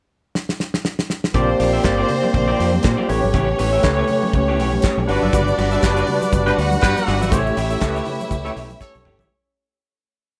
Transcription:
0.35 snare
0.49 snare
0.60 snare
0.74 snare
0.85 snare
0.99 snare
1.10 snare
1.24 snare
1.34 fingered electric bass A#1, tine electric piano A#3 G4 C5 D5, tonewheel organ A#3 D4 G4, string section C4 C5, clean electric guitar C4 F4 G4 D5, kick, closed hi-hat, muted conga, low conga
1.59 fingered electric bass A#1, clean electric guitar C4 F4 G4 D5, open hi-hat, muted conga
1.73 clean electric guitar C4 F4 G4 E5
1.83 fingered electric bass G1, tine electric piano A#3 G4 C5 D5, muted clean electric guitar stroke, kick, snare, clap, closed hi-hat, muted conga
1.98 clean electric guitar C4 F4 G4 D5
2.08 muted clean electric guitar stroke, open hi-hat, low conga
2.23 muted clean electric guitar stroke, high conga
2.34 fingered electric bass A#1, muted clean electric guitar stroke, kick, closed hi-hat, low conga
2.48 clean electric guitar C4 F4 G4 D5
2.58 fingered electric bass F2, clean electric guitar C4 F4 G4 D5, open hi-hat, muted conga
2.72 muted clean electric guitar stroke, high conga
2.83 fingered electric bass A#2, muted clean electric guitar stroke, kick, snare, clap, closed hi-hat, muted conga
2.97 clean electric guitar C4 F4 G4 D5, high conga
3.08 fingered electric bass A1, tine electric piano A3 G4 B4 C#5, tonewheel organ A3 C#4, clean electric guitar B3 E4 G4 C#5, string section C#4 C#5, open hi-hat, muted conga
3.22 fingered electric bass G#1, muted clean electric guitar stroke, high conga
3.34 fingered electric bass A1, clean electric guitar B3 E4 G4 C#5, kick, closed hi-hat, low conga
3.59 fingered electric bass A1, clean electric guitar B3 E4 G4 C#5, open hi-hat, muted conga
3.73 clean electric guitar B3 E4 G4 E5
3.83 fingered electric bass C#2, tine electric piano A3 G4 B4 C#5, muted clean electric guitar stroke, kick, snare, clap, closed hi-hat, muted conga
3.97 clean electric guitar B3 E4 G4 C#5
4.08 muted clean electric guitar stroke, open hi-hat, muted conga, low conga
4.23 muted clean electric guitar stroke, high conga
4.33 fingered electric bass C#2, muted clean electric guitar stroke, kick, closed hi-hat, muted conga, low conga
4.48 clean electric guitar B3 E4 G4 C#5
4.59 fingered electric bass B1, clean electric guitar B3 E4 G4 C#5, open hi-hat, muted conga
4.72 muted clean electric guitar stroke, high conga
4.82 muted clean electric guitar stroke, kick, snare, clap, closed hi-hat, muted conga
4.97 fingered electric bass B1, muted clean electric guitar stroke, high conga
5.07 fingered electric bass G1, tine electric piano G3 D4 F#4 B4, tonewheel organ G3 D4 B4 F#5, string section D4 D5, clean electric guitar D4 F#4 B4 D5, open hi-hat
5.22 fingered electric bass F#1, clean electric guitar D4 F#4 B4 E5, high conga
5.33 fingered electric bass G1, clean electric guitar D4 F#4 B4 D5, kick, closed hi-hat, low conga, shaker
5.47 shaker
5.58 fingered electric bass G1, clean electric guitar D4 F#4 B4 D5, open hi-hat, muted conga, shaker
5.71 clean electric guitar D4 F#4 B4 E5, shaker
5.82 fingered electric bass F#1, tine electric piano G3 D4 F#4 B4, muted clean electric guitar stroke, kick, snare, clap, closed hi-hat, shaker
5.96 clean electric guitar D4 F#4 B4 D5, shaker
6.07 muted clean electric guitar stroke, open hi-hat, muted conga, low conga
6.21 muted clean electric guitar stroke, high conga, shaker
6.32 fingered electric bass G1, muted clean electric guitar stroke, kick, closed hi-hat, muted conga, low conga, shaker
6.46 horn section B3 G4 B4, clean electric guitar D4 F#4 B4 D5, shaker
6.57 fingered electric bass D2, clean electric guitar D4 F#4 B4 D5, string section F#4 F#5, open hi-hat
6.71 high conga, shaker
6.81 fingered electric bass G2, horn section B3 G4 B4, muted clean electric guitar stroke, kick, snare, clap, closed hi-hat, shaker
6.96 muted clean electric guitar stroke, high conga, shaker
7.07 fingered electric bass G1, clean electric guitar D4 F#4 B4 D5, snare, open hi-hat, muted conga
7.21 fingered electric bass G#1, clean electric guitar D4 F#4 B4 E5, high conga, shaker
7.31 fingered electric bass A1, tine electric piano A3 E4 G4 C5, tonewheel organ A3 C#4 G4, clean electric guitar A3 E4 G4 C#5, string section E4 E5, kick, closed hi-hat, muted conga, low conga, shaker
7.39 tine electric piano C#5
7.46 shaker
7.57 fingered electric bass A1, clean electric guitar A3 E4 G4 C#5, open hi-hat, shaker
7.70 clean electric guitar A3 E4 G4 E5, shaker
7.81 fingered electric bass C#2, tine electric piano A3 E4 G4 A4, muted clean electric guitar stroke, kick, snare, clap, closed hi-hat, shaker
7.88 tine electric piano B4
7.95 clean electric guitar A3 E4 G4 C#5, shaker
8.05 muted clean electric guitar stroke, open hi-hat, muted conga, low conga
8.20 muted clean electric guitar stroke, high conga, shaker
8.31 fingered electric bass C#2, muted clean electric guitar stroke, kick, closed hi-hat, low conga, shaker
8.45 clean electric guitar A3 E4 G4 C#5, horn section G4 A4 C#5, shaker
8.56 fingered electric bass B1, clean electric guitar A3 E4 G4 C#5, open hi-hat, muted conga
8.69 muted clean electric guitar stroke, high conga, shaker
8.80 string section C#4 C#5, horn section G4 A4 C#5, muted clean electric guitar stroke, kick, snare, shaker
8.95 fingered electric bass B1, muted clean electric guitar stroke, high conga, shaker
9.05 fingered electric bass G1, clean electric guitar A3 E4 G4 C#5, mid tom, muted conga
9.19 fingered electric bass G#1, clean electric guitar A3 E4 G4 E5, floor tom, high conga, shaker

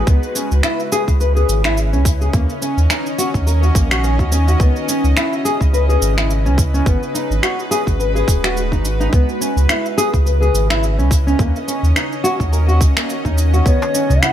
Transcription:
Already playing: synth drone F#4 B4
0.07 sub bass C#2, synth drone C#3, nylon-string guitar B3, kick, shaker
0.19 synth drone C#4
0.23 shaker
0.35 nylon-string guitar C#4, shaker
0.51 sub bass C#2, shaker
0.63 nylon-string guitar E4, finger snap, shaker
0.74 synth drone E4
0.80 shaker
0.92 nylon-string guitar G#4, shaker
1.08 sub bass C#2, synth drone D#5, kick, shaker
1.21 nylon-string guitar B4, shaker
1.36 nylon-string guitar G#4, shaker
1.49 sub bass G#1, shaker
1.64 nylon-string guitar E4, finger snap, shaker
1.77 shaker
1.93 sub bass C#2, nylon-string guitar C#4, shaker
2.05 kick, shaker
2.21 nylon-string guitar G#4, shaker
2.33 sub bass D#2, synth drone D#3, nylon-string guitar A#3, kick, shaker
2.50 shaker
2.62 nylon-string guitar C#4, shaker
2.77 sub bass D#2, shaker
2.87 nylon-string guitar D#4, synth drone F#4 A#4, finger snap, shaker
3.06 shaker
3.18 nylon-string guitar F#4, shaker
3.34 sub bass D#2, kick, shaker
3.47 nylon-string guitar A#4, shaker
3.63 nylon-string guitar F#4, shaker
3.75 sub bass A#1, nylon-string guitar A#3, kick, shaker
3.91 nylon-string guitar F#4, finger snap, shaker
4.04 nylon-string guitar C#4, shaker
4.19 sub bass D#2, nylon-string guitar F#4, kick, shaker
4.32 nylon-string guitar C#4, shaker
4.48 nylon-string guitar F#4, shaker
4.60 sub bass C#2, synth drone C#3, nylon-string guitar B3, kick, shaker
4.76 shaker
4.86 nylon-string guitar C#4, synth drone B4, shaker
4.93 synth drone E4
5.04 sub bass C#2, shaker
5.17 nylon-string guitar E4, finger snap, shaker
5.33 shaker
5.45 nylon-string guitar G#4, shaker
5.61 sub bass C#2, kick, shaker
5.73 nylon-string guitar B4, shaker
5.89 nylon-string guitar G#4, shaker
6.02 sub bass G#1, shaker
6.17 nylon-string guitar E4, finger snap, shaker
6.31 shaker
6.45 sub bass C#2, nylon-string guitar C#4, shaker
6.58 kick, shaker
6.74 nylon-string guitar C#4, shaker
6.86 sub bass G#1, synth drone G#3, nylon-string guitar B3, kick, shaker
7.03 synth drone F#4, shaker
7.14 nylon-string guitar D#4, synth drone D#4, shaker
7.30 sub bass G#1, shaker
7.43 nylon-string guitar F#4, finger snap, shaker
7.59 shaker
7.71 nylon-string guitar G#4, shaker
7.87 sub bass G#1, kick, shaker
7.99 nylon-string guitar B4, shaker
8.15 nylon-string guitar G#4, shaker
8.28 sub bass D#1, kick, shaker
8.44 nylon-string guitar F#4, finger snap, shaker
8.57 shaker
8.72 sub bass G#1, nylon-string guitar D#4, kick, shaker
8.85 shaker
9.00 nylon-string guitar D#4, shaker
9.12 sub bass C#2, synth drone C#3, nylon-string guitar B3, kick, shaker
9.29 synth drone C#4, shaker
9.37 nylon-string guitar C#4, synth drone D#5
9.42 shaker
9.56 sub bass C#2, shaker
9.69 nylon-string guitar E4, finger snap, shaker
9.77 synth drone E4
9.86 shaker
9.98 nylon-string guitar G#4, shaker
10.13 sub bass C#2, kick, shaker
10.26 nylon-string guitar B4, shaker
10.42 nylon-string guitar G#4, shaker
10.54 sub bass G#1, shaker
10.70 nylon-string guitar E4, finger snap, shaker
10.83 shaker
10.98 sub bass C#2, nylon-string guitar C#4, shaker
11.11 kick, shaker
11.27 nylon-string guitar C#4, shaker
11.39 sub bass D#2, synth drone D#3, nylon-string guitar A#3, kick, shaker
11.56 shaker
11.68 nylon-string guitar C#4, shaker
11.74 synth drone A#4
11.80 sub bass D#2, synth drone F#4
11.84 shaker
11.96 nylon-string guitar D#4, finger snap, shaker
12.13 shaker
12.24 nylon-string guitar F#4, shaker
12.40 sub bass D#2, kick, shaker
12.52 nylon-string guitar A#4, shaker
12.68 nylon-string guitar F#4, shaker
12.81 sub bass C#2, kick, shaker
12.97 nylon-string guitar A#3, finger snap, shaker
13.10 shaker
13.25 sub bass D#2, nylon-string guitar D#4, kick, shaker
13.38 shaker
13.54 nylon-string guitar F#4, shaker
13.65 sub bass C#2, synth drone C#3, nylon-string guitar B3, bansuri C#5, kick, shaker
13.82 darbuka ka, darbuka tek, shaker
13.90 synth drone B4
13.94 nylon-string guitar C#4, synth drone E4, shaker
14.10 sub bass C#2, darbuka dum, shaker
14.22 nylon-string guitar E4, bansuri F#5, finger snap, shaker

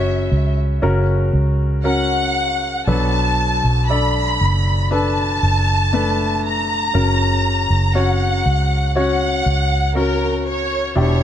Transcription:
Already playing: fingered electric bass F#1, grand piano C#3 C#4 F#4 B4 C#5, violin section E5
0.31 fingered electric bass C#2
0.82 fingered electric bass F#1, grand piano C#3 C#4 F#4 A#4
1.33 fingered electric bass C#2
1.84 grand piano C#4 F#4 A#4, violin section F#5
2.87 fingered electric bass B1, grand piano B2 F#3 D4 A4 B4, violin section A5
3.64 fingered electric bass B1
3.89 grand piano D4 A4 D5, violin section B5
4.41 fingered electric bass F#1
4.91 grand piano D4 A4 B4, violin section A5
5.43 fingered electric bass F#1
5.93 grand piano A3 D4 B4
6.46 violin section A#5
6.94 fingered electric bass F#1, grand piano C#3 C#4 F#4 A#4
7.70 fingered electric bass F#1
7.95 grand piano C#4 F#4 C#5, violin section F#5
8.46 fingered electric bass C#2
8.95 grand piano C#4 F#4 C#5, violin section F#5
9.46 fingered electric bass C#2
9.95 grand piano C#4 F#4 A#4, violin section A#4
10.48 violin section C#5
10.95 fingered electric bass E1, grand piano B2 D4 E4 G4, violin section C#5

